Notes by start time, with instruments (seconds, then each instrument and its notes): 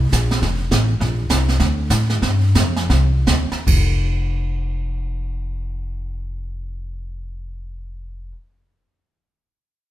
Already playing: upright bass C2
0.12 upright bass A#1, kick, snare, hi-hat pedal
0.31 snare
0.42 upright bass F1, brush sweep, kick, snare
0.71 upright bass A1, kick, snare, hi-hat pedal
1.00 upright bass A#1, brush sweep, kick, snare
1.29 upright bass C2, kick, snare, hi-hat pedal
1.49 snare
1.60 upright bass D2, brush sweep, kick, snare
1.90 upright bass A2, kick, snare, hi-hat pedal
2.10 snare
2.22 upright bass G2, brush sweep, kick, snare
2.55 upright bass F2, kick, snare, hi-hat pedal
2.76 snare
2.90 upright bass C2, brush sweep, kick, snare
3.27 upright bass D2, kick, snare, hi-hat pedal
3.52 muted upright bass stroke, snare
3.67 upright bass F1, kick, crash